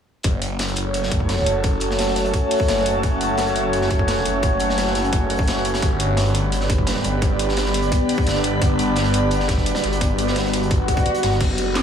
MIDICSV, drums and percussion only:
0, 0, Header, 1, 2, 480
1, 0, Start_track
1, 0, Tempo, 348837
1, 334, Time_signature, 4, 2, 24, 8
1, 16274, End_track
2, 0, Start_track
2, 0, Title_t, "Drums"
2, 322, Note_on_c, 9, 42, 78
2, 334, Note_off_c, 9, 42, 0
2, 334, Note_on_c, 9, 42, 83
2, 335, Note_on_c, 9, 36, 119
2, 472, Note_off_c, 9, 36, 0
2, 472, Note_off_c, 9, 42, 0
2, 574, Note_on_c, 9, 42, 94
2, 576, Note_off_c, 9, 42, 0
2, 576, Note_on_c, 9, 42, 64
2, 713, Note_off_c, 9, 42, 0
2, 814, Note_on_c, 9, 42, 84
2, 815, Note_off_c, 9, 42, 0
2, 815, Note_on_c, 9, 42, 79
2, 821, Note_on_c, 9, 38, 111
2, 936, Note_off_c, 9, 42, 0
2, 936, Note_on_c, 9, 42, 41
2, 959, Note_off_c, 9, 38, 0
2, 1045, Note_off_c, 9, 42, 0
2, 1045, Note_on_c, 9, 42, 69
2, 1055, Note_off_c, 9, 42, 0
2, 1055, Note_on_c, 9, 42, 91
2, 1193, Note_off_c, 9, 42, 0
2, 1294, Note_on_c, 9, 42, 91
2, 1295, Note_off_c, 9, 42, 0
2, 1295, Note_on_c, 9, 42, 78
2, 1417, Note_on_c, 9, 38, 49
2, 1433, Note_off_c, 9, 42, 0
2, 1534, Note_on_c, 9, 36, 105
2, 1534, Note_on_c, 9, 42, 92
2, 1535, Note_off_c, 9, 42, 0
2, 1535, Note_on_c, 9, 42, 69
2, 1554, Note_off_c, 9, 38, 0
2, 1654, Note_off_c, 9, 36, 0
2, 1654, Note_on_c, 9, 36, 56
2, 1672, Note_off_c, 9, 42, 0
2, 1773, Note_on_c, 9, 38, 124
2, 1775, Note_on_c, 9, 42, 85
2, 1792, Note_off_c, 9, 36, 0
2, 1891, Note_off_c, 9, 38, 0
2, 1891, Note_on_c, 9, 38, 43
2, 1912, Note_off_c, 9, 42, 0
2, 2015, Note_on_c, 9, 42, 93
2, 2019, Note_off_c, 9, 42, 0
2, 2019, Note_on_c, 9, 42, 63
2, 2029, Note_off_c, 9, 38, 0
2, 2156, Note_off_c, 9, 42, 0
2, 2250, Note_on_c, 9, 42, 80
2, 2254, Note_on_c, 9, 36, 117
2, 2255, Note_off_c, 9, 42, 0
2, 2255, Note_on_c, 9, 42, 81
2, 2392, Note_off_c, 9, 36, 0
2, 2393, Note_off_c, 9, 42, 0
2, 2480, Note_on_c, 9, 42, 64
2, 2494, Note_off_c, 9, 42, 0
2, 2494, Note_on_c, 9, 42, 95
2, 2624, Note_on_c, 9, 38, 55
2, 2631, Note_off_c, 9, 42, 0
2, 2734, Note_on_c, 9, 42, 81
2, 2741, Note_off_c, 9, 42, 0
2, 2741, Note_on_c, 9, 42, 91
2, 2743, Note_off_c, 9, 38, 0
2, 2743, Note_on_c, 9, 38, 112
2, 2853, Note_off_c, 9, 38, 0
2, 2853, Note_on_c, 9, 38, 47
2, 2879, Note_off_c, 9, 42, 0
2, 2971, Note_off_c, 9, 38, 0
2, 2971, Note_on_c, 9, 38, 43
2, 2974, Note_on_c, 9, 42, 93
2, 2976, Note_off_c, 9, 42, 0
2, 2976, Note_on_c, 9, 42, 61
2, 3100, Note_off_c, 9, 42, 0
2, 3100, Note_on_c, 9, 42, 46
2, 3109, Note_off_c, 9, 38, 0
2, 3213, Note_off_c, 9, 42, 0
2, 3213, Note_on_c, 9, 42, 86
2, 3214, Note_off_c, 9, 42, 0
2, 3214, Note_on_c, 9, 36, 104
2, 3214, Note_on_c, 9, 42, 80
2, 3352, Note_off_c, 9, 36, 0
2, 3352, Note_off_c, 9, 42, 0
2, 3454, Note_on_c, 9, 42, 91
2, 3455, Note_on_c, 9, 46, 87
2, 3574, Note_on_c, 9, 36, 100
2, 3592, Note_off_c, 9, 42, 0
2, 3593, Note_off_c, 9, 46, 0
2, 3694, Note_on_c, 9, 38, 105
2, 3694, Note_on_c, 9, 42, 79
2, 3700, Note_off_c, 9, 42, 0
2, 3700, Note_on_c, 9, 42, 82
2, 3712, Note_off_c, 9, 36, 0
2, 3810, Note_off_c, 9, 38, 0
2, 3810, Note_on_c, 9, 38, 42
2, 3837, Note_off_c, 9, 42, 0
2, 3934, Note_on_c, 9, 42, 87
2, 3940, Note_off_c, 9, 42, 0
2, 3940, Note_on_c, 9, 42, 68
2, 3947, Note_off_c, 9, 38, 0
2, 4078, Note_off_c, 9, 42, 0
2, 4173, Note_on_c, 9, 42, 79
2, 4175, Note_off_c, 9, 42, 0
2, 4175, Note_on_c, 9, 36, 121
2, 4175, Note_on_c, 9, 42, 81
2, 4312, Note_off_c, 9, 36, 0
2, 4312, Note_off_c, 9, 42, 0
2, 4414, Note_on_c, 9, 42, 95
2, 4415, Note_off_c, 9, 42, 0
2, 4415, Note_on_c, 9, 42, 66
2, 4553, Note_off_c, 9, 42, 0
2, 4643, Note_on_c, 9, 42, 84
2, 4649, Note_on_c, 9, 38, 116
2, 4656, Note_off_c, 9, 42, 0
2, 4656, Note_on_c, 9, 42, 82
2, 4773, Note_off_c, 9, 42, 0
2, 4773, Note_on_c, 9, 42, 45
2, 4786, Note_off_c, 9, 38, 0
2, 4894, Note_off_c, 9, 42, 0
2, 4894, Note_on_c, 9, 42, 94
2, 5032, Note_off_c, 9, 42, 0
2, 5135, Note_on_c, 9, 42, 78
2, 5138, Note_off_c, 9, 42, 0
2, 5138, Note_on_c, 9, 42, 79
2, 5252, Note_on_c, 9, 38, 47
2, 5275, Note_off_c, 9, 42, 0
2, 5375, Note_on_c, 9, 36, 107
2, 5375, Note_on_c, 9, 42, 93
2, 5381, Note_off_c, 9, 42, 0
2, 5381, Note_on_c, 9, 42, 74
2, 5389, Note_off_c, 9, 38, 0
2, 5495, Note_off_c, 9, 36, 0
2, 5495, Note_on_c, 9, 36, 64
2, 5519, Note_off_c, 9, 42, 0
2, 5612, Note_on_c, 9, 38, 125
2, 5615, Note_on_c, 9, 42, 81
2, 5616, Note_off_c, 9, 42, 0
2, 5616, Note_on_c, 9, 42, 82
2, 5633, Note_off_c, 9, 36, 0
2, 5741, Note_off_c, 9, 38, 0
2, 5741, Note_on_c, 9, 38, 42
2, 5754, Note_off_c, 9, 42, 0
2, 5855, Note_on_c, 9, 42, 89
2, 5859, Note_off_c, 9, 42, 0
2, 5859, Note_on_c, 9, 42, 72
2, 5878, Note_off_c, 9, 38, 0
2, 5997, Note_off_c, 9, 42, 0
2, 6091, Note_on_c, 9, 42, 82
2, 6095, Note_off_c, 9, 42, 0
2, 6095, Note_on_c, 9, 36, 121
2, 6095, Note_on_c, 9, 42, 77
2, 6233, Note_off_c, 9, 36, 0
2, 6233, Note_off_c, 9, 42, 0
2, 6323, Note_on_c, 9, 42, 65
2, 6334, Note_off_c, 9, 42, 0
2, 6334, Note_on_c, 9, 42, 94
2, 6459, Note_on_c, 9, 38, 55
2, 6472, Note_off_c, 9, 42, 0
2, 6574, Note_on_c, 9, 42, 77
2, 6576, Note_off_c, 9, 38, 0
2, 6576, Note_on_c, 9, 38, 120
2, 6580, Note_off_c, 9, 42, 0
2, 6580, Note_on_c, 9, 42, 84
2, 6699, Note_off_c, 9, 38, 0
2, 6699, Note_on_c, 9, 38, 50
2, 6718, Note_off_c, 9, 42, 0
2, 6809, Note_off_c, 9, 38, 0
2, 6809, Note_on_c, 9, 38, 48
2, 6815, Note_on_c, 9, 42, 88
2, 6818, Note_off_c, 9, 42, 0
2, 6818, Note_on_c, 9, 42, 65
2, 6942, Note_off_c, 9, 42, 0
2, 6942, Note_on_c, 9, 42, 45
2, 6947, Note_off_c, 9, 38, 0
2, 7054, Note_off_c, 9, 42, 0
2, 7054, Note_on_c, 9, 42, 79
2, 7055, Note_off_c, 9, 42, 0
2, 7055, Note_on_c, 9, 36, 108
2, 7055, Note_on_c, 9, 42, 85
2, 7192, Note_off_c, 9, 42, 0
2, 7193, Note_off_c, 9, 36, 0
2, 7293, Note_on_c, 9, 42, 90
2, 7294, Note_on_c, 9, 46, 75
2, 7415, Note_on_c, 9, 36, 106
2, 7431, Note_off_c, 9, 42, 0
2, 7432, Note_off_c, 9, 46, 0
2, 7533, Note_on_c, 9, 42, 73
2, 7539, Note_off_c, 9, 42, 0
2, 7539, Note_on_c, 9, 42, 80
2, 7543, Note_on_c, 9, 38, 109
2, 7553, Note_off_c, 9, 36, 0
2, 7652, Note_off_c, 9, 38, 0
2, 7652, Note_on_c, 9, 38, 43
2, 7677, Note_off_c, 9, 42, 0
2, 7774, Note_on_c, 9, 42, 87
2, 7778, Note_off_c, 9, 42, 0
2, 7778, Note_on_c, 9, 42, 74
2, 7789, Note_off_c, 9, 38, 0
2, 7896, Note_on_c, 9, 38, 99
2, 7907, Note_off_c, 9, 42, 0
2, 7907, Note_on_c, 9, 42, 73
2, 8014, Note_off_c, 9, 42, 0
2, 8014, Note_on_c, 9, 42, 73
2, 8015, Note_on_c, 9, 36, 114
2, 8022, Note_off_c, 9, 42, 0
2, 8022, Note_on_c, 9, 42, 81
2, 8033, Note_off_c, 9, 38, 0
2, 8152, Note_off_c, 9, 36, 0
2, 8160, Note_off_c, 9, 42, 0
2, 8254, Note_on_c, 9, 42, 57
2, 8391, Note_off_c, 9, 42, 0
2, 8490, Note_on_c, 9, 38, 110
2, 8494, Note_on_c, 9, 42, 73
2, 8500, Note_off_c, 9, 42, 0
2, 8500, Note_on_c, 9, 42, 98
2, 8616, Note_off_c, 9, 42, 0
2, 8616, Note_on_c, 9, 42, 43
2, 8627, Note_off_c, 9, 38, 0
2, 8733, Note_off_c, 9, 42, 0
2, 8733, Note_on_c, 9, 42, 83
2, 8737, Note_off_c, 9, 42, 0
2, 8737, Note_on_c, 9, 42, 70
2, 8875, Note_off_c, 9, 42, 0
2, 8974, Note_on_c, 9, 42, 78
2, 8978, Note_off_c, 9, 42, 0
2, 8978, Note_on_c, 9, 42, 87
2, 9090, Note_on_c, 9, 38, 44
2, 9116, Note_off_c, 9, 42, 0
2, 9214, Note_on_c, 9, 36, 108
2, 9214, Note_on_c, 9, 42, 85
2, 9215, Note_off_c, 9, 42, 0
2, 9215, Note_on_c, 9, 42, 73
2, 9228, Note_off_c, 9, 38, 0
2, 9334, Note_off_c, 9, 36, 0
2, 9334, Note_on_c, 9, 36, 60
2, 9353, Note_off_c, 9, 42, 0
2, 9451, Note_on_c, 9, 38, 124
2, 9454, Note_on_c, 9, 42, 74
2, 9472, Note_off_c, 9, 36, 0
2, 9561, Note_off_c, 9, 38, 0
2, 9561, Note_on_c, 9, 38, 48
2, 9592, Note_off_c, 9, 42, 0
2, 9689, Note_on_c, 9, 42, 65
2, 9695, Note_off_c, 9, 42, 0
2, 9695, Note_on_c, 9, 42, 84
2, 9698, Note_off_c, 9, 38, 0
2, 9832, Note_off_c, 9, 42, 0
2, 9934, Note_on_c, 9, 36, 112
2, 9935, Note_on_c, 9, 42, 81
2, 10072, Note_off_c, 9, 36, 0
2, 10073, Note_off_c, 9, 42, 0
2, 10174, Note_on_c, 9, 42, 89
2, 10177, Note_off_c, 9, 42, 0
2, 10177, Note_on_c, 9, 42, 62
2, 10304, Note_on_c, 9, 38, 53
2, 10314, Note_off_c, 9, 42, 0
2, 10414, Note_on_c, 9, 42, 73
2, 10423, Note_off_c, 9, 38, 0
2, 10423, Note_on_c, 9, 38, 112
2, 10534, Note_off_c, 9, 38, 0
2, 10534, Note_on_c, 9, 38, 52
2, 10552, Note_off_c, 9, 42, 0
2, 10652, Note_off_c, 9, 38, 0
2, 10652, Note_on_c, 9, 38, 42
2, 10654, Note_on_c, 9, 42, 90
2, 10656, Note_off_c, 9, 42, 0
2, 10656, Note_on_c, 9, 42, 64
2, 10768, Note_off_c, 9, 42, 0
2, 10768, Note_on_c, 9, 42, 45
2, 10790, Note_off_c, 9, 38, 0
2, 10895, Note_off_c, 9, 42, 0
2, 10895, Note_on_c, 9, 36, 98
2, 10895, Note_on_c, 9, 42, 75
2, 10902, Note_off_c, 9, 42, 0
2, 10902, Note_on_c, 9, 42, 82
2, 11032, Note_off_c, 9, 36, 0
2, 11039, Note_off_c, 9, 42, 0
2, 11132, Note_on_c, 9, 46, 75
2, 11134, Note_on_c, 9, 42, 84
2, 11255, Note_on_c, 9, 36, 99
2, 11269, Note_off_c, 9, 46, 0
2, 11272, Note_off_c, 9, 42, 0
2, 11372, Note_on_c, 9, 42, 88
2, 11375, Note_off_c, 9, 42, 0
2, 11375, Note_on_c, 9, 42, 69
2, 11387, Note_on_c, 9, 38, 112
2, 11392, Note_off_c, 9, 36, 0
2, 11493, Note_off_c, 9, 38, 0
2, 11493, Note_on_c, 9, 38, 45
2, 11512, Note_off_c, 9, 42, 0
2, 11614, Note_on_c, 9, 42, 84
2, 11618, Note_off_c, 9, 42, 0
2, 11618, Note_on_c, 9, 42, 70
2, 11630, Note_off_c, 9, 38, 0
2, 11756, Note_off_c, 9, 42, 0
2, 11855, Note_on_c, 9, 36, 113
2, 11855, Note_on_c, 9, 42, 80
2, 11992, Note_off_c, 9, 42, 0
2, 11993, Note_off_c, 9, 36, 0
2, 12096, Note_on_c, 9, 42, 85
2, 12100, Note_off_c, 9, 42, 0
2, 12100, Note_on_c, 9, 42, 60
2, 12237, Note_off_c, 9, 42, 0
2, 12325, Note_on_c, 9, 42, 83
2, 12335, Note_off_c, 9, 42, 0
2, 12335, Note_on_c, 9, 42, 74
2, 12341, Note_on_c, 9, 38, 116
2, 12458, Note_off_c, 9, 42, 0
2, 12458, Note_on_c, 9, 42, 47
2, 12479, Note_off_c, 9, 38, 0
2, 12574, Note_off_c, 9, 42, 0
2, 12574, Note_on_c, 9, 42, 65
2, 12575, Note_off_c, 9, 42, 0
2, 12575, Note_on_c, 9, 42, 89
2, 12713, Note_off_c, 9, 42, 0
2, 12808, Note_on_c, 9, 42, 88
2, 12815, Note_off_c, 9, 42, 0
2, 12815, Note_on_c, 9, 42, 75
2, 12935, Note_on_c, 9, 38, 48
2, 12953, Note_off_c, 9, 42, 0
2, 13046, Note_off_c, 9, 38, 0
2, 13046, Note_on_c, 9, 38, 99
2, 13055, Note_on_c, 9, 36, 99
2, 13055, Note_on_c, 9, 42, 90
2, 13062, Note_off_c, 9, 42, 0
2, 13062, Note_on_c, 9, 42, 76
2, 13175, Note_off_c, 9, 36, 0
2, 13175, Note_on_c, 9, 36, 54
2, 13181, Note_off_c, 9, 38, 0
2, 13181, Note_on_c, 9, 38, 37
2, 13200, Note_off_c, 9, 42, 0
2, 13294, Note_on_c, 9, 42, 67
2, 13295, Note_off_c, 9, 42, 0
2, 13295, Note_on_c, 9, 42, 71
2, 13313, Note_off_c, 9, 36, 0
2, 13319, Note_off_c, 9, 38, 0
2, 13415, Note_on_c, 9, 38, 101
2, 13418, Note_off_c, 9, 42, 0
2, 13418, Note_on_c, 9, 42, 81
2, 13535, Note_off_c, 9, 42, 0
2, 13535, Note_on_c, 9, 42, 83
2, 13544, Note_off_c, 9, 38, 0
2, 13544, Note_on_c, 9, 38, 41
2, 13658, Note_off_c, 9, 42, 0
2, 13658, Note_on_c, 9, 42, 65
2, 13682, Note_off_c, 9, 38, 0
2, 13775, Note_off_c, 9, 42, 0
2, 13775, Note_on_c, 9, 42, 80
2, 13776, Note_on_c, 9, 36, 111
2, 13782, Note_off_c, 9, 42, 0
2, 13782, Note_on_c, 9, 42, 94
2, 13913, Note_off_c, 9, 36, 0
2, 13920, Note_off_c, 9, 42, 0
2, 14014, Note_on_c, 9, 42, 67
2, 14015, Note_off_c, 9, 42, 0
2, 14015, Note_on_c, 9, 42, 96
2, 14137, Note_on_c, 9, 38, 56
2, 14152, Note_off_c, 9, 42, 0
2, 14251, Note_on_c, 9, 42, 79
2, 14256, Note_off_c, 9, 42, 0
2, 14256, Note_on_c, 9, 42, 81
2, 14258, Note_off_c, 9, 38, 0
2, 14258, Note_on_c, 9, 38, 121
2, 14380, Note_off_c, 9, 38, 0
2, 14380, Note_on_c, 9, 38, 47
2, 14393, Note_off_c, 9, 42, 0
2, 14494, Note_on_c, 9, 42, 65
2, 14496, Note_off_c, 9, 42, 0
2, 14496, Note_on_c, 9, 42, 88
2, 14498, Note_off_c, 9, 38, 0
2, 14498, Note_on_c, 9, 38, 43
2, 14625, Note_off_c, 9, 42, 0
2, 14625, Note_on_c, 9, 42, 45
2, 14635, Note_off_c, 9, 38, 0
2, 14731, Note_off_c, 9, 42, 0
2, 14731, Note_on_c, 9, 42, 75
2, 14735, Note_off_c, 9, 42, 0
2, 14735, Note_on_c, 9, 36, 100
2, 14735, Note_on_c, 9, 42, 78
2, 14873, Note_off_c, 9, 36, 0
2, 14873, Note_off_c, 9, 42, 0
2, 14974, Note_on_c, 9, 42, 89
2, 14975, Note_on_c, 9, 36, 61
2, 14978, Note_off_c, 9, 42, 0
2, 14978, Note_on_c, 9, 42, 63
2, 15093, Note_off_c, 9, 42, 0
2, 15093, Note_on_c, 9, 42, 76
2, 15095, Note_off_c, 9, 36, 0
2, 15095, Note_on_c, 9, 36, 98
2, 15215, Note_off_c, 9, 42, 0
2, 15215, Note_on_c, 9, 42, 77
2, 15233, Note_off_c, 9, 36, 0
2, 15335, Note_off_c, 9, 42, 0
2, 15335, Note_on_c, 9, 42, 59
2, 15454, Note_off_c, 9, 42, 0
2, 15454, Note_on_c, 9, 42, 91
2, 15457, Note_on_c, 9, 38, 101
2, 15463, Note_off_c, 9, 42, 0
2, 15463, Note_on_c, 9, 42, 81
2, 15575, Note_off_c, 9, 38, 0
2, 15575, Note_on_c, 9, 38, 43
2, 15601, Note_off_c, 9, 42, 0
2, 15694, Note_on_c, 9, 42, 83
2, 15694, Note_on_c, 9, 49, 76
2, 15695, Note_on_c, 9, 36, 116
2, 15699, Note_off_c, 9, 42, 0
2, 15699, Note_on_c, 9, 42, 88
2, 15712, Note_off_c, 9, 38, 0
2, 15832, Note_off_c, 9, 49, 0
2, 15833, Note_off_c, 9, 36, 0
2, 15837, Note_off_c, 9, 42, 0
2, 15934, Note_on_c, 9, 42, 96
2, 15935, Note_off_c, 9, 42, 0
2, 15935, Note_on_c, 9, 42, 62
2, 16072, Note_off_c, 9, 42, 0
2, 16170, Note_on_c, 9, 38, 113
2, 16174, Note_off_c, 9, 38, 0
2, 16174, Note_on_c, 9, 38, 110
2, 16174, Note_on_c, 9, 42, 76
2, 16177, Note_off_c, 9, 42, 0
2, 16177, Note_on_c, 9, 42, 81
2, 16274, Note_off_c, 9, 38, 0
2, 16274, Note_off_c, 9, 42, 0
2, 16274, End_track
0, 0, End_of_file